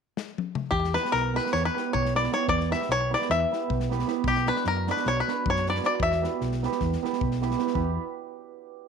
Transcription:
0.17 snare
0.38 high tom
0.55 mid tom
0.71 fingered electric bass E2, five-string banjo G4, kick
0.84 snare
0.93 hammered dulcimer B3 E4 G4 B4, five-string banjo B4, snare
1.05 snare
1.12 fingered electric bass B1, five-string banjo A#4, snare
1.34 hammered dulcimer B3 E4 G4 B4, five-string banjo B4, snare
1.46 snare
1.53 fingered electric bass E2, five-string banjo C#5, snare
1.65 five-string banjo B4
1.75 hammered dulcimer B3 E4 G4 B4, snare
1.93 fingered electric bass B1, five-string banjo C#5, kick
2.05 snare
2.15 hammered dulcimer B3 E4 G4 B4, five-string banjo D5, snare
2.24 snare
2.32 hammered dulcimer B3 E4 G4 B4, five-string banjo C#5, snare
2.48 fingered electric bass E2, five-string banjo D5, kick
2.60 snare
2.70 hammered dulcimer B3 E4 G4 B4, five-string banjo E5, snare
2.82 snare
2.89 fingered electric bass B1, five-string banjo C#5, snare
3.11 hammered dulcimer B3 E4 G4 B4, five-string banjo D5, snare
3.21 snare
3.30 fingered electric bass E2, five-string banjo E5, snare
3.51 hammered dulcimer B3 E4 G4 B4, snare
3.70 fingered electric bass B1, kick
3.80 snare
3.90 hammered dulcimer B3 E4 G4 B4, snare
3.99 snare
4.07 hammered dulcimer B3 E4 G4 B4, snare
4.24 fingered electric bass B1, five-string banjo G4, kick
4.35 snare
4.46 hammered dulcimer B3 D4 F#4 B4, five-string banjo B4, snare
4.56 snare
4.64 fingered electric bass F#2, five-string banjo A#4, snare
4.87 hammered dulcimer B3 D4 F#4 B4, five-string banjo B4, snare
4.97 snare
5.05 fingered electric bass B1, five-string banjo C#5, snare
5.20 five-string banjo B4
5.28 hammered dulcimer B3 D4 F#4 B4, snare
5.46 fingered electric bass F#2, kick
5.50 five-string banjo C#5
5.56 snare
5.66 hammered dulcimer B3 D4 F#4 B4, five-string banjo D5, snare
5.75 snare
5.83 hammered dulcimer B3 D4 F#4 B4, five-string banjo D5, snare
6.00 fingered electric bass E2, five-string banjo E5, kick
6.12 snare
6.22 hammered dulcimer B3 E4 G4 B4, snare
6.41 fingered electric bass B1, snare
6.52 snare
6.63 hammered dulcimer B3 E4 G4 B4, snare
6.72 snare
6.80 fingered electric bass E2, kick, snare
6.93 snare
7.02 hammered dulcimer B3 E4 G4 B4, snare
7.13 snare
7.21 fingered electric bass B1, kick
7.31 snare
7.41 hammered dulcimer B3 E4 G4 B4, snare
7.51 snare
7.59 hammered dulcimer B3 E4 G4 B4, snare
7.67 snare
7.74 fingered electric bass E2, hammered dulcimer B3 E4 G4 B4, kick

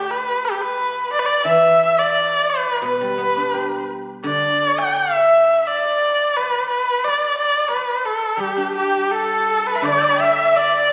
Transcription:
Already playing: guzheng D3 A3 D4 E4 A4, erhu G4
0.10 erhu B4
0.45 erhu G4
0.62 erhu B4
1.12 erhu D5
1.19 erhu B4
1.26 erhu D5
1.45 guzheng E3, erhu E5
1.98 erhu D5
2.49 erhu B4
2.82 guzheng B2, erhu B4
3.01 guzheng G3
3.18 guzheng B3
3.37 guzheng D4
3.54 guzheng G4
4.23 guzheng D3, erhu D5
4.79 erhu G5
4.97 erhu E5
5.67 erhu D5
6.36 erhu B4
6.70 erhu B4
7.04 erhu D5
7.38 erhu D5
7.71 erhu B4
8.06 erhu A4
8.37 guzheng G3, erhu G4
8.57 guzheng D4
8.75 erhu G4
9.11 erhu A4
9.67 erhu B4
9.75 erhu E5
9.82 guzheng D3, erhu D5
9.86 erhu D5
9.97 erhu E6 G6
10.05 erhu B5 D6
10.12 erhu A5
10.16 erhu E5 G5
10.21 erhu E5
10.56 erhu D5

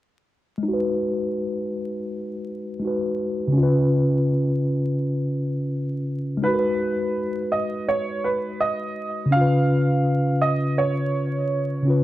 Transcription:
0.58 tine electric piano G#3
0.63 tine electric piano D#4
0.68 tine electric piano F#4
0.73 tine electric piano B4
2.79 tine electric piano G#3 D#4
2.85 tine electric piano F#4 B4
3.48 tine electric piano C#3
3.53 tine electric piano C#4
3.58 tine electric piano F4
3.63 tine electric piano B4
6.37 tine electric piano G#3
6.42 tine electric piano D#4, upright piano B4
6.47 tine electric piano F#4
6.53 tine electric piano A#4
6.59 tine electric piano B4
7.52 upright piano D#5
7.88 upright piano C#5
8.24 upright piano B4
8.60 upright piano D#5
9.26 tine electric piano C#3
9.31 tine electric piano C#4, upright piano F5
9.36 tine electric piano F4
9.41 tine electric piano B4
10.41 upright piano D#5
10.78 upright piano C#5
11.82 tine electric piano C#3 C#4
11.87 tine electric piano F4 B4

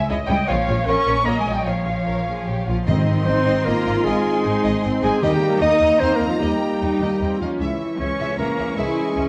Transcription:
0.09 double bass section C#2, violin section E4 C#5, viola section D#5
0.26 double bass section C#2, cello section G3, violin section E4 C#5 G5, flute G5
0.47 double bass section A#1, cello section F3, violin section F4 C#5 F5, viola section C#5, flute F5
0.68 double bass section A#1, violin section F4 C#5
0.86 double bass section A#1, cello section C#4, violin section F4 C#5 C#6, viola section A#4, flute C#6
1.06 double bass section A#1, violin section F4 C#5
1.24 double bass section A#1, cello section A#3, violin section F4 C#5 A#5, viola section D#5, flute A#5
1.39 cello section G#3, violin section G#5, flute G#5
1.47 double bass section A#1, violin section F4 C#5
1.52 cello section G3, violin section G5, flute G5
1.65 double bass section A#1, cello section F3, violin section F4 C#5 F5, viola section C#5, flute F5
1.85 double bass section A#1, violin section F4 C#5
2.07 double bass section A#1, violin section A#4
2.27 double bass section A#1, violin section G#4
2.47 double bass section A#1, violin section G4
2.66 double bass section A#1, cello section F3, violin section F4 F5, clarinet F4
2.86 double bass section G#1, timpani G#2, cello section D#3, french horn section C4 D#4, viola section C4, clarinet D#4, violin section D#5 C6
3.25 double bass section G#1, cello section C4, viola section D#4, clarinet C5, violin section D#5 C6
3.46 double bass section G#1, violin section D#5
3.65 double bass section G#1, cello section A#3, viola section F4, clarinet A#4, violin section D#5 A#5
3.86 double bass section G#1, violin section D#5
4.05 double bass section G#1, cello section G#3, clarinet G#4, violin section D#5 G#5
4.43 double bass section G#1, viola section D#4, violin section D#5
4.63 double bass section G#1, violin section D#5
4.83 double bass section G#1, viola section C4, violin section D#5
5.01 double bass section G#1, cello section G#3, clarinet G#4, violin section D#5 G#5
5.21 double bass section D#2, timpani D#3, cello section G3, viola section A#3, french horn section A#3 D#4, clarinet G4, violin section D#5 G5 A#5
5.61 double bass section D#2, cello section D#4, violin section D#5 D#6, clarinet D#5
5.80 double bass section D#2, violin section D#5
6.00 double bass section D#2, cello section C4, viola section C4, clarinet C5, violin section D#5 C6
6.13 cello section A#3, clarinet A#4, violin section A#5
6.20 double bass section D#2, violin section D#5
6.27 cello section F3, clarinet F4, violin section F5
6.40 double bass section D#2, cello section G3, viola section A#3, clarinet G4, violin section D#5 G5
6.80 double bass section D#2, viola section D#4, violin section D#5
7.01 double bass section D#2, viola section A#3, violin section D#5
7.21 double bass section D#2, viola section C4, violin section D#5
7.39 double bass section D#2, cello section F3, viola section C#4, clarinet F4, violin section D#5 F5
7.59 double bass section C#2, cello section E3, french horn section E3 C#4, clarinet E4, violin section E5 C#6
7.99 double bass section C#2, viola section G#3, cello section C#4, clarinet C#5, violin section E5 C#6
8.19 double bass section C#2, violin section E5
8.38 double bass section C#2, cello section A#3, viola section C#4, clarinet A#4, violin section E5 A#5
8.58 double bass section C#2, violin section E5
8.77 double bass section C#2, cello section G#3, viola section E4, clarinet G#4, violin section E5 G#5
9.16 double bass section C#2, viola section C#4, violin section E5

